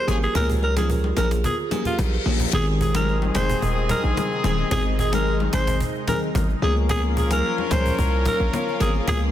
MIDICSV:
0, 0, Header, 1, 10, 480
1, 0, Start_track
1, 0, Key_signature, -4, "major"
1, 0, Tempo, 545455
1, 308, Time_signature, 4, 2, 24, 8
1, 8197, End_track
2, 0, Start_track
2, 0, Title_t, "Kalimba"
2, 0, Program_c, 0, 108
2, 76, Note_on_c, 0, 70, 84
2, 82, Note_on_c, 0, 67, 63
2, 163, Note_off_c, 0, 70, 0
2, 168, Note_off_c, 0, 67, 0
2, 554, Note_on_c, 0, 73, 84
2, 561, Note_on_c, 0, 70, 65
2, 643, Note_off_c, 0, 73, 0
2, 647, Note_off_c, 0, 70, 0
2, 680, Note_on_c, 0, 68, 81
2, 687, Note_on_c, 0, 65, 62
2, 761, Note_off_c, 0, 68, 0
2, 765, Note_off_c, 0, 65, 0
2, 795, Note_on_c, 0, 70, 82
2, 802, Note_on_c, 0, 65, 65
2, 883, Note_off_c, 0, 70, 0
2, 888, Note_off_c, 0, 65, 0
2, 1034, Note_on_c, 0, 72, 86
2, 1041, Note_on_c, 0, 68, 68
2, 1122, Note_off_c, 0, 72, 0
2, 1126, Note_off_c, 0, 68, 0
2, 1274, Note_on_c, 0, 68, 89
2, 1281, Note_on_c, 0, 65, 73
2, 1362, Note_off_c, 0, 68, 0
2, 1367, Note_off_c, 0, 65, 0
2, 1514, Note_on_c, 0, 70, 75
2, 1522, Note_on_c, 0, 67, 63
2, 1603, Note_off_c, 0, 70, 0
2, 1607, Note_off_c, 0, 67, 0
2, 1639, Note_on_c, 0, 70, 79
2, 1646, Note_on_c, 0, 67, 64
2, 1720, Note_off_c, 0, 70, 0
2, 1725, Note_off_c, 0, 67, 0
2, 1880, Note_on_c, 0, 72, 80
2, 1887, Note_on_c, 0, 68, 61
2, 1961, Note_off_c, 0, 72, 0
2, 1965, Note_off_c, 0, 68, 0
2, 2119, Note_on_c, 0, 73, 79
2, 2126, Note_on_c, 0, 70, 59
2, 2200, Note_off_c, 0, 73, 0
2, 2205, Note_off_c, 0, 70, 0
2, 8197, End_track
3, 0, Start_track
3, 0, Title_t, "Alto saxophone"
3, 0, Program_c, 1, 65
3, 204, Note_on_c, 1, 68, 81
3, 297, Note_off_c, 1, 68, 0
3, 318, Note_on_c, 1, 70, 99
3, 420, Note_off_c, 1, 70, 0
3, 559, Note_on_c, 1, 70, 72
3, 660, Note_off_c, 1, 70, 0
3, 684, Note_on_c, 1, 68, 71
3, 777, Note_off_c, 1, 68, 0
3, 1037, Note_on_c, 1, 70, 77
3, 1139, Note_off_c, 1, 70, 0
3, 1277, Note_on_c, 1, 68, 88
3, 1379, Note_off_c, 1, 68, 0
3, 1642, Note_on_c, 1, 65, 78
3, 1736, Note_off_c, 1, 65, 0
3, 2239, Note_on_c, 1, 68, 107
3, 2340, Note_off_c, 1, 68, 0
3, 2479, Note_on_c, 1, 68, 71
3, 2580, Note_off_c, 1, 68, 0
3, 2604, Note_on_c, 1, 70, 81
3, 2803, Note_off_c, 1, 70, 0
3, 2956, Note_on_c, 1, 72, 83
3, 3156, Note_off_c, 1, 72, 0
3, 3439, Note_on_c, 1, 70, 87
3, 3540, Note_off_c, 1, 70, 0
3, 3918, Note_on_c, 1, 68, 77
3, 4020, Note_off_c, 1, 68, 0
3, 4157, Note_on_c, 1, 68, 110
3, 4259, Note_off_c, 1, 68, 0
3, 4397, Note_on_c, 1, 68, 81
3, 4499, Note_off_c, 1, 68, 0
3, 4523, Note_on_c, 1, 70, 87
3, 4723, Note_off_c, 1, 70, 0
3, 4877, Note_on_c, 1, 72, 84
3, 5077, Note_off_c, 1, 72, 0
3, 5356, Note_on_c, 1, 70, 80
3, 5459, Note_off_c, 1, 70, 0
3, 5838, Note_on_c, 1, 68, 84
3, 5940, Note_off_c, 1, 68, 0
3, 6078, Note_on_c, 1, 68, 109
3, 6179, Note_off_c, 1, 68, 0
3, 6320, Note_on_c, 1, 68, 74
3, 6421, Note_off_c, 1, 68, 0
3, 6445, Note_on_c, 1, 70, 84
3, 6643, Note_off_c, 1, 70, 0
3, 6798, Note_on_c, 1, 72, 86
3, 6998, Note_off_c, 1, 72, 0
3, 7276, Note_on_c, 1, 70, 88
3, 7379, Note_off_c, 1, 70, 0
3, 7757, Note_on_c, 1, 68, 77
3, 7859, Note_off_c, 1, 68, 0
3, 7996, Note_on_c, 1, 68, 113
3, 8099, Note_off_c, 1, 68, 0
3, 8197, End_track
4, 0, Start_track
4, 0, Title_t, "Horn section"
4, 0, Program_c, 2, 61
4, 70, Note_on_c, 2, 53, 79
4, 70, Note_on_c, 2, 68, 88
4, 71, Note_on_c, 2, 61, 79
4, 144, Note_off_c, 2, 53, 0
4, 144, Note_off_c, 2, 68, 0
4, 145, Note_off_c, 2, 61, 0
4, 2227, Note_on_c, 2, 51, 93
4, 2228, Note_on_c, 2, 60, 96
4, 2228, Note_on_c, 2, 68, 107
4, 5552, Note_off_c, 2, 51, 0
4, 5552, Note_off_c, 2, 68, 0
4, 5553, Note_off_c, 2, 60, 0
4, 5828, Note_on_c, 2, 53, 92
4, 5828, Note_on_c, 2, 61, 94
4, 5829, Note_on_c, 2, 70, 101
4, 8197, Note_off_c, 2, 53, 0
4, 8197, Note_off_c, 2, 61, 0
4, 8197, Note_off_c, 2, 70, 0
4, 8197, End_track
5, 0, Start_track
5, 0, Title_t, "Analog synth pad"
5, 0, Program_c, 3, 89
5, 2226, Note_on_c, 3, 56, 75
5, 2226, Note_on_c, 3, 63, 97
5, 2227, Note_on_c, 3, 48, 87
5, 5792, Note_off_c, 3, 48, 0
5, 5792, Note_off_c, 3, 56, 0
5, 5792, Note_off_c, 3, 63, 0
5, 5826, Note_on_c, 3, 61, 75
5, 5827, Note_on_c, 3, 58, 75
5, 5827, Note_on_c, 3, 65, 92
5, 8197, Note_off_c, 3, 58, 0
5, 8197, Note_off_c, 3, 61, 0
5, 8197, Note_off_c, 3, 65, 0
5, 8197, End_track
6, 0, Start_track
6, 0, Title_t, "FM electric piano"
6, 0, Program_c, 4, 5
6, 64, Note_on_c, 4, 53, 75
6, 65, Note_on_c, 4, 58, 65
6, 67, Note_on_c, 4, 61, 66
6, 69, Note_on_c, 4, 68, 79
6, 247, Note_off_c, 4, 53, 0
6, 247, Note_off_c, 4, 58, 0
6, 248, Note_off_c, 4, 61, 0
6, 249, Note_off_c, 4, 68, 0
6, 303, Note_on_c, 4, 53, 89
6, 305, Note_on_c, 4, 58, 82
6, 307, Note_on_c, 4, 61, 82
6, 308, Note_on_c, 4, 68, 101
6, 486, Note_off_c, 4, 53, 0
6, 487, Note_off_c, 4, 58, 0
6, 488, Note_off_c, 4, 61, 0
6, 489, Note_off_c, 4, 68, 0
6, 670, Note_on_c, 4, 53, 75
6, 671, Note_on_c, 4, 58, 67
6, 673, Note_on_c, 4, 61, 65
6, 675, Note_on_c, 4, 68, 81
6, 847, Note_off_c, 4, 53, 0
6, 848, Note_off_c, 4, 58, 0
6, 849, Note_off_c, 4, 61, 0
6, 850, Note_off_c, 4, 68, 0
6, 1025, Note_on_c, 4, 53, 77
6, 1027, Note_on_c, 4, 58, 72
6, 1028, Note_on_c, 4, 61, 71
6, 1030, Note_on_c, 4, 68, 84
6, 1207, Note_off_c, 4, 53, 0
6, 1208, Note_off_c, 4, 58, 0
6, 1209, Note_off_c, 4, 61, 0
6, 1210, Note_off_c, 4, 68, 0
6, 1504, Note_on_c, 4, 53, 73
6, 1505, Note_on_c, 4, 58, 68
6, 1507, Note_on_c, 4, 61, 66
6, 1510, Note_on_c, 4, 68, 83
6, 1687, Note_off_c, 4, 53, 0
6, 1687, Note_off_c, 4, 58, 0
6, 1688, Note_off_c, 4, 61, 0
6, 1690, Note_off_c, 4, 68, 0
6, 1984, Note_on_c, 4, 53, 72
6, 1986, Note_on_c, 4, 58, 65
6, 1988, Note_on_c, 4, 61, 68
6, 1989, Note_on_c, 4, 68, 80
6, 2167, Note_off_c, 4, 53, 0
6, 2168, Note_off_c, 4, 58, 0
6, 2169, Note_off_c, 4, 61, 0
6, 2169, Note_off_c, 4, 68, 0
6, 2224, Note_on_c, 4, 51, 87
6, 2226, Note_on_c, 4, 56, 86
6, 2227, Note_on_c, 4, 60, 80
6, 2229, Note_on_c, 4, 68, 102
6, 2560, Note_off_c, 4, 51, 0
6, 2562, Note_off_c, 4, 56, 0
6, 2562, Note_off_c, 4, 60, 0
6, 2563, Note_off_c, 4, 68, 0
6, 2589, Note_on_c, 4, 51, 76
6, 2592, Note_on_c, 4, 56, 73
6, 2593, Note_on_c, 4, 60, 66
6, 2595, Note_on_c, 4, 68, 84
6, 2767, Note_off_c, 4, 51, 0
6, 2768, Note_off_c, 4, 56, 0
6, 2769, Note_off_c, 4, 60, 0
6, 2770, Note_off_c, 4, 68, 0
6, 2945, Note_on_c, 4, 51, 77
6, 2947, Note_on_c, 4, 56, 74
6, 2948, Note_on_c, 4, 60, 75
6, 2950, Note_on_c, 4, 68, 87
6, 3127, Note_off_c, 4, 51, 0
6, 3128, Note_off_c, 4, 56, 0
6, 3129, Note_off_c, 4, 60, 0
6, 3130, Note_off_c, 4, 68, 0
6, 3905, Note_on_c, 4, 51, 80
6, 3907, Note_on_c, 4, 56, 71
6, 3908, Note_on_c, 4, 60, 71
6, 3910, Note_on_c, 4, 68, 83
6, 4087, Note_off_c, 4, 51, 0
6, 4088, Note_off_c, 4, 56, 0
6, 4089, Note_off_c, 4, 60, 0
6, 4090, Note_off_c, 4, 68, 0
6, 4144, Note_on_c, 4, 51, 92
6, 4146, Note_on_c, 4, 56, 86
6, 4147, Note_on_c, 4, 60, 80
6, 4150, Note_on_c, 4, 68, 98
6, 4327, Note_off_c, 4, 51, 0
6, 4328, Note_off_c, 4, 56, 0
6, 4328, Note_off_c, 4, 60, 0
6, 4330, Note_off_c, 4, 68, 0
6, 4509, Note_on_c, 4, 51, 77
6, 4510, Note_on_c, 4, 56, 71
6, 4512, Note_on_c, 4, 60, 72
6, 4514, Note_on_c, 4, 68, 86
6, 4838, Note_off_c, 4, 51, 0
6, 4839, Note_off_c, 4, 56, 0
6, 4840, Note_off_c, 4, 60, 0
6, 4841, Note_off_c, 4, 68, 0
6, 4864, Note_on_c, 4, 51, 80
6, 4866, Note_on_c, 4, 56, 74
6, 4867, Note_on_c, 4, 60, 77
6, 4870, Note_on_c, 4, 68, 89
6, 5087, Note_off_c, 4, 51, 0
6, 5088, Note_off_c, 4, 56, 0
6, 5089, Note_off_c, 4, 60, 0
6, 5090, Note_off_c, 4, 68, 0
6, 5344, Note_on_c, 4, 51, 77
6, 5345, Note_on_c, 4, 56, 68
6, 5348, Note_on_c, 4, 60, 73
6, 5349, Note_on_c, 4, 68, 83
6, 5527, Note_off_c, 4, 51, 0
6, 5527, Note_off_c, 4, 56, 0
6, 5529, Note_off_c, 4, 60, 0
6, 5529, Note_off_c, 4, 68, 0
6, 5825, Note_on_c, 4, 53, 80
6, 5827, Note_on_c, 4, 58, 72
6, 5828, Note_on_c, 4, 61, 75
6, 5830, Note_on_c, 4, 68, 88
6, 6048, Note_off_c, 4, 53, 0
6, 6049, Note_off_c, 4, 58, 0
6, 6049, Note_off_c, 4, 61, 0
6, 6050, Note_off_c, 4, 68, 0
6, 6064, Note_on_c, 4, 53, 94
6, 6066, Note_on_c, 4, 58, 85
6, 6067, Note_on_c, 4, 61, 83
6, 6069, Note_on_c, 4, 68, 99
6, 6401, Note_off_c, 4, 53, 0
6, 6402, Note_off_c, 4, 58, 0
6, 6402, Note_off_c, 4, 61, 0
6, 6403, Note_off_c, 4, 68, 0
6, 6430, Note_on_c, 4, 53, 81
6, 6431, Note_on_c, 4, 58, 74
6, 6433, Note_on_c, 4, 61, 73
6, 6435, Note_on_c, 4, 68, 89
6, 6607, Note_off_c, 4, 53, 0
6, 6608, Note_off_c, 4, 58, 0
6, 6609, Note_off_c, 4, 61, 0
6, 6610, Note_off_c, 4, 68, 0
6, 6783, Note_on_c, 4, 53, 84
6, 6784, Note_on_c, 4, 58, 73
6, 6786, Note_on_c, 4, 61, 76
6, 6788, Note_on_c, 4, 68, 89
6, 6966, Note_off_c, 4, 53, 0
6, 6967, Note_off_c, 4, 58, 0
6, 6968, Note_off_c, 4, 61, 0
6, 6969, Note_off_c, 4, 68, 0
6, 7743, Note_on_c, 4, 53, 76
6, 7745, Note_on_c, 4, 58, 73
6, 7747, Note_on_c, 4, 61, 72
6, 7749, Note_on_c, 4, 68, 86
6, 7926, Note_off_c, 4, 53, 0
6, 7927, Note_off_c, 4, 58, 0
6, 7928, Note_off_c, 4, 61, 0
6, 7929, Note_off_c, 4, 68, 0
6, 7984, Note_on_c, 4, 53, 91
6, 7986, Note_on_c, 4, 58, 84
6, 7988, Note_on_c, 4, 61, 85
6, 7989, Note_on_c, 4, 68, 106
6, 8167, Note_off_c, 4, 53, 0
6, 8168, Note_off_c, 4, 58, 0
6, 8169, Note_off_c, 4, 61, 0
6, 8169, Note_off_c, 4, 68, 0
6, 8197, End_track
7, 0, Start_track
7, 0, Title_t, "808-style bass"
7, 0, Program_c, 5, 38
7, 68, Note_on_c, 5, 32, 86
7, 244, Note_off_c, 5, 32, 0
7, 309, Note_on_c, 5, 37, 109
7, 993, Note_off_c, 5, 37, 0
7, 1028, Note_on_c, 5, 34, 87
7, 1296, Note_off_c, 5, 34, 0
7, 1748, Note_on_c, 5, 34, 99
7, 1924, Note_off_c, 5, 34, 0
7, 1986, Note_on_c, 5, 34, 95
7, 2163, Note_off_c, 5, 34, 0
7, 2227, Note_on_c, 5, 32, 112
7, 2912, Note_off_c, 5, 32, 0
7, 2949, Note_on_c, 5, 29, 92
7, 3125, Note_off_c, 5, 29, 0
7, 3189, Note_on_c, 5, 27, 103
7, 3456, Note_off_c, 5, 27, 0
7, 3554, Note_on_c, 5, 34, 92
7, 3638, Note_off_c, 5, 34, 0
7, 3908, Note_on_c, 5, 27, 101
7, 4084, Note_off_c, 5, 27, 0
7, 4147, Note_on_c, 5, 32, 110
7, 4832, Note_off_c, 5, 32, 0
7, 4869, Note_on_c, 5, 32, 91
7, 5136, Note_off_c, 5, 32, 0
7, 5587, Note_on_c, 5, 32, 95
7, 5764, Note_off_c, 5, 32, 0
7, 5828, Note_on_c, 5, 37, 96
7, 6532, Note_off_c, 5, 37, 0
7, 6788, Note_on_c, 5, 37, 90
7, 6964, Note_off_c, 5, 37, 0
7, 7027, Note_on_c, 5, 36, 102
7, 7295, Note_off_c, 5, 36, 0
7, 7392, Note_on_c, 5, 34, 91
7, 7477, Note_off_c, 5, 34, 0
7, 7747, Note_on_c, 5, 32, 91
7, 7923, Note_off_c, 5, 32, 0
7, 7987, Note_on_c, 5, 37, 110
7, 8197, Note_off_c, 5, 37, 0
7, 8197, End_track
8, 0, Start_track
8, 0, Title_t, "Reverse cymbal"
8, 0, Program_c, 6, 119
8, 1267, Note_on_c, 6, 60, 86
8, 2227, Note_off_c, 6, 60, 0
8, 8197, End_track
9, 0, Start_track
9, 0, Title_t, "Cajon"
9, 72, Note_on_c, 9, 38, 91
9, 160, Note_off_c, 9, 38, 0
9, 192, Note_on_c, 9, 38, 45
9, 280, Note_off_c, 9, 38, 0
9, 309, Note_on_c, 9, 36, 119
9, 397, Note_off_c, 9, 36, 0
9, 436, Note_on_c, 9, 36, 92
9, 524, Note_off_c, 9, 36, 0
9, 674, Note_on_c, 9, 38, 120
9, 762, Note_off_c, 9, 38, 0
9, 789, Note_on_c, 9, 36, 96
9, 877, Note_off_c, 9, 36, 0
9, 909, Note_on_c, 9, 38, 29
9, 997, Note_off_c, 9, 38, 0
9, 1027, Note_on_c, 9, 38, 108
9, 1115, Note_off_c, 9, 38, 0
9, 1154, Note_on_c, 9, 38, 101
9, 1242, Note_off_c, 9, 38, 0
9, 1269, Note_on_c, 9, 36, 104
9, 1357, Note_off_c, 9, 36, 0
9, 1400, Note_on_c, 9, 38, 31
9, 1488, Note_off_c, 9, 38, 0
9, 1507, Note_on_c, 9, 38, 95
9, 1595, Note_off_c, 9, 38, 0
9, 1631, Note_on_c, 9, 36, 72
9, 1636, Note_on_c, 9, 38, 43
9, 1719, Note_off_c, 9, 36, 0
9, 1724, Note_off_c, 9, 38, 0
9, 1748, Note_on_c, 9, 36, 94
9, 1754, Note_on_c, 9, 38, 93
9, 1836, Note_off_c, 9, 36, 0
9, 1842, Note_off_c, 9, 38, 0
9, 1881, Note_on_c, 9, 38, 32
9, 1969, Note_off_c, 9, 38, 0
9, 1987, Note_on_c, 9, 38, 27
9, 2075, Note_off_c, 9, 38, 0
9, 2110, Note_on_c, 9, 36, 91
9, 2198, Note_off_c, 9, 36, 0
9, 2228, Note_on_c, 9, 36, 127
9, 2316, Note_off_c, 9, 36, 0
9, 2353, Note_on_c, 9, 38, 33
9, 2441, Note_off_c, 9, 38, 0
9, 2471, Note_on_c, 9, 36, 99
9, 2559, Note_off_c, 9, 36, 0
9, 2592, Note_on_c, 9, 38, 120
9, 2680, Note_off_c, 9, 38, 0
9, 2710, Note_on_c, 9, 38, 44
9, 2798, Note_off_c, 9, 38, 0
9, 2828, Note_on_c, 9, 38, 30
9, 2916, Note_off_c, 9, 38, 0
9, 2946, Note_on_c, 9, 38, 108
9, 2949, Note_on_c, 9, 36, 102
9, 3034, Note_off_c, 9, 38, 0
9, 3037, Note_off_c, 9, 36, 0
9, 3075, Note_on_c, 9, 36, 99
9, 3163, Note_off_c, 9, 36, 0
9, 3189, Note_on_c, 9, 36, 87
9, 3277, Note_off_c, 9, 36, 0
9, 3318, Note_on_c, 9, 38, 30
9, 3406, Note_off_c, 9, 38, 0
9, 3426, Note_on_c, 9, 38, 99
9, 3428, Note_on_c, 9, 36, 104
9, 3514, Note_off_c, 9, 38, 0
9, 3516, Note_off_c, 9, 36, 0
9, 3555, Note_on_c, 9, 38, 28
9, 3643, Note_off_c, 9, 38, 0
9, 3673, Note_on_c, 9, 38, 95
9, 3761, Note_off_c, 9, 38, 0
9, 3799, Note_on_c, 9, 38, 34
9, 3887, Note_off_c, 9, 38, 0
9, 3909, Note_on_c, 9, 38, 95
9, 3997, Note_off_c, 9, 38, 0
9, 4028, Note_on_c, 9, 38, 27
9, 4116, Note_off_c, 9, 38, 0
9, 4147, Note_on_c, 9, 36, 123
9, 4235, Note_off_c, 9, 36, 0
9, 4272, Note_on_c, 9, 38, 33
9, 4360, Note_off_c, 9, 38, 0
9, 4391, Note_on_c, 9, 36, 97
9, 4479, Note_off_c, 9, 36, 0
9, 4511, Note_on_c, 9, 38, 123
9, 4599, Note_off_c, 9, 38, 0
9, 4629, Note_on_c, 9, 38, 44
9, 4717, Note_off_c, 9, 38, 0
9, 4748, Note_on_c, 9, 38, 30
9, 4836, Note_off_c, 9, 38, 0
9, 4865, Note_on_c, 9, 38, 113
9, 4869, Note_on_c, 9, 36, 109
9, 4953, Note_off_c, 9, 38, 0
9, 4957, Note_off_c, 9, 36, 0
9, 4993, Note_on_c, 9, 38, 100
9, 4995, Note_on_c, 9, 36, 96
9, 5081, Note_off_c, 9, 38, 0
9, 5083, Note_off_c, 9, 36, 0
9, 5108, Note_on_c, 9, 36, 94
9, 5196, Note_off_c, 9, 36, 0
9, 5239, Note_on_c, 9, 38, 31
9, 5327, Note_off_c, 9, 38, 0
9, 5346, Note_on_c, 9, 38, 98
9, 5348, Note_on_c, 9, 36, 101
9, 5434, Note_off_c, 9, 38, 0
9, 5436, Note_off_c, 9, 36, 0
9, 5475, Note_on_c, 9, 38, 27
9, 5563, Note_off_c, 9, 38, 0
9, 5588, Note_on_c, 9, 36, 104
9, 5593, Note_on_c, 9, 38, 98
9, 5676, Note_off_c, 9, 36, 0
9, 5681, Note_off_c, 9, 38, 0
9, 5718, Note_on_c, 9, 38, 34
9, 5806, Note_off_c, 9, 38, 0
9, 5948, Note_on_c, 9, 38, 29
9, 6036, Note_off_c, 9, 38, 0
9, 6067, Note_on_c, 9, 36, 126
9, 6155, Note_off_c, 9, 36, 0
9, 6191, Note_on_c, 9, 38, 34
9, 6279, Note_off_c, 9, 38, 0
9, 6309, Note_on_c, 9, 36, 93
9, 6397, Note_off_c, 9, 36, 0
9, 6430, Note_on_c, 9, 38, 119
9, 6518, Note_off_c, 9, 38, 0
9, 6548, Note_on_c, 9, 38, 43
9, 6636, Note_off_c, 9, 38, 0
9, 6667, Note_on_c, 9, 38, 31
9, 6755, Note_off_c, 9, 38, 0
9, 6784, Note_on_c, 9, 38, 113
9, 6788, Note_on_c, 9, 36, 109
9, 6872, Note_off_c, 9, 38, 0
9, 6876, Note_off_c, 9, 36, 0
9, 6914, Note_on_c, 9, 36, 99
9, 7002, Note_off_c, 9, 36, 0
9, 7028, Note_on_c, 9, 36, 90
9, 7116, Note_off_c, 9, 36, 0
9, 7263, Note_on_c, 9, 38, 95
9, 7267, Note_on_c, 9, 36, 109
9, 7351, Note_off_c, 9, 38, 0
9, 7355, Note_off_c, 9, 36, 0
9, 7511, Note_on_c, 9, 38, 92
9, 7599, Note_off_c, 9, 38, 0
9, 7637, Note_on_c, 9, 38, 33
9, 7725, Note_off_c, 9, 38, 0
9, 7748, Note_on_c, 9, 38, 92
9, 7836, Note_off_c, 9, 38, 0
9, 7867, Note_on_c, 9, 38, 28
9, 7955, Note_off_c, 9, 38, 0
9, 7986, Note_on_c, 9, 36, 121
9, 8074, Note_off_c, 9, 36, 0
9, 8197, End_track
10, 0, Start_track
10, 0, Title_t, "Drums"
10, 68, Note_on_c, 9, 63, 72
10, 68, Note_on_c, 9, 64, 76
10, 156, Note_off_c, 9, 63, 0
10, 156, Note_off_c, 9, 64, 0
10, 308, Note_on_c, 9, 64, 71
10, 396, Note_off_c, 9, 64, 0
10, 547, Note_on_c, 9, 63, 59
10, 635, Note_off_c, 9, 63, 0
10, 677, Note_on_c, 9, 63, 81
10, 765, Note_off_c, 9, 63, 0
10, 915, Note_on_c, 9, 63, 79
10, 1003, Note_off_c, 9, 63, 0
10, 1025, Note_on_c, 9, 63, 84
10, 1113, Note_off_c, 9, 63, 0
10, 1269, Note_on_c, 9, 64, 70
10, 1357, Note_off_c, 9, 64, 0
10, 1511, Note_on_c, 9, 63, 80
10, 1599, Note_off_c, 9, 63, 0
10, 1750, Note_on_c, 9, 63, 77
10, 1750, Note_on_c, 9, 64, 83
10, 1838, Note_off_c, 9, 63, 0
10, 1838, Note_off_c, 9, 64, 0
10, 1988, Note_on_c, 9, 63, 75
10, 1988, Note_on_c, 9, 64, 75
10, 2076, Note_off_c, 9, 63, 0
10, 2076, Note_off_c, 9, 64, 0
10, 2229, Note_on_c, 9, 64, 71
10, 2317, Note_off_c, 9, 64, 0
10, 2597, Note_on_c, 9, 63, 87
10, 2685, Note_off_c, 9, 63, 0
10, 2834, Note_on_c, 9, 63, 87
10, 2922, Note_off_c, 9, 63, 0
10, 2944, Note_on_c, 9, 63, 82
10, 3032, Note_off_c, 9, 63, 0
10, 3429, Note_on_c, 9, 63, 84
10, 3517, Note_off_c, 9, 63, 0
10, 3668, Note_on_c, 9, 63, 83
10, 3668, Note_on_c, 9, 64, 84
10, 3756, Note_off_c, 9, 63, 0
10, 3756, Note_off_c, 9, 64, 0
10, 3907, Note_on_c, 9, 63, 77
10, 3907, Note_on_c, 9, 64, 80
10, 3995, Note_off_c, 9, 63, 0
10, 3995, Note_off_c, 9, 64, 0
10, 4149, Note_on_c, 9, 64, 74
10, 4237, Note_off_c, 9, 64, 0
10, 4516, Note_on_c, 9, 63, 88
10, 4604, Note_off_c, 9, 63, 0
10, 4754, Note_on_c, 9, 63, 85
10, 4842, Note_off_c, 9, 63, 0
10, 4863, Note_on_c, 9, 63, 85
10, 4951, Note_off_c, 9, 63, 0
10, 5350, Note_on_c, 9, 63, 84
10, 5438, Note_off_c, 9, 63, 0
10, 5588, Note_on_c, 9, 63, 85
10, 5588, Note_on_c, 9, 64, 82
10, 5676, Note_off_c, 9, 63, 0
10, 5676, Note_off_c, 9, 64, 0
10, 5828, Note_on_c, 9, 63, 75
10, 5828, Note_on_c, 9, 64, 75
10, 5916, Note_off_c, 9, 63, 0
10, 5916, Note_off_c, 9, 64, 0
10, 6069, Note_on_c, 9, 64, 76
10, 6157, Note_off_c, 9, 64, 0
10, 6435, Note_on_c, 9, 63, 83
10, 6523, Note_off_c, 9, 63, 0
10, 6673, Note_on_c, 9, 63, 86
10, 6761, Note_off_c, 9, 63, 0
10, 6783, Note_on_c, 9, 63, 87
10, 6871, Note_off_c, 9, 63, 0
10, 7270, Note_on_c, 9, 63, 89
10, 7358, Note_off_c, 9, 63, 0
10, 7508, Note_on_c, 9, 63, 81
10, 7508, Note_on_c, 9, 64, 83
10, 7596, Note_off_c, 9, 63, 0
10, 7596, Note_off_c, 9, 64, 0
10, 7747, Note_on_c, 9, 63, 83
10, 7747, Note_on_c, 9, 64, 80
10, 7835, Note_off_c, 9, 63, 0
10, 7835, Note_off_c, 9, 64, 0
10, 7988, Note_on_c, 9, 64, 72
10, 8076, Note_off_c, 9, 64, 0
10, 8197, End_track
0, 0, End_of_file